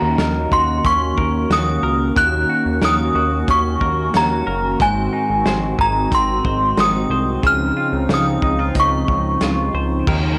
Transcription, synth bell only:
Already playing: A#5
0.53 C6
0.86 C#6
1.53 D#6
2.17 F#6
2.85 D#6
3.51 C#6
4.17 A#5
4.82 G#5
5.81 A#5
6.15 C6
6.80 D#6
7.47 F6
8.14 D#6
8.80 C#6

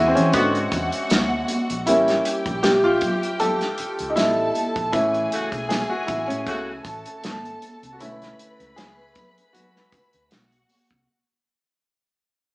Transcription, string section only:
Already playing: G#4 G#5
0.35 F#4 F#5
1.87 G4 G5
4.17 A4 A5
4.93 G#4 G#5
6.85 A4 A5
8.00 B4 B5
10.31 F#4 F#5

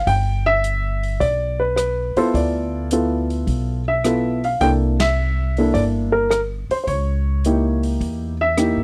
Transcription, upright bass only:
0.07 G1
1.21 B1
2.16 muted upright bass stroke
2.34 D2
3.47 B1
4.60 C2
5.74 G1
6.70 muted upright bass stroke
6.87 C#2
8.01 E2
8.77 G2

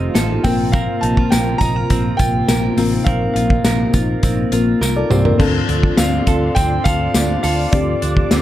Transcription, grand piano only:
0.44 G5
0.72 F5
1.01 A5
1.30 G5
1.58 A#5
2.17 G5
3.04 F5
3.34 F5
5.97 F5
6.55 G5
6.84 F5
7.43 F5
7.72 D5

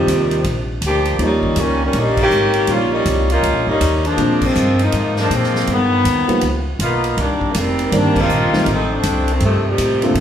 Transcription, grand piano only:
Already playing: D#3 F3 C4 D#4 G4
1.19 F3 G3 A#3 C#4 D#4
2.68 F3 G3 A#3 C#4 D#4
4.16 F3 G#3 A#3 C4 D4
6.28 F3 G3 A#3 B3 D#4
7.92 D#3 G3 A#3 C4 D5
8.53 D#3 G3 A3 C4 D#4
10.02 D3 G#3 A#3 C4 F4

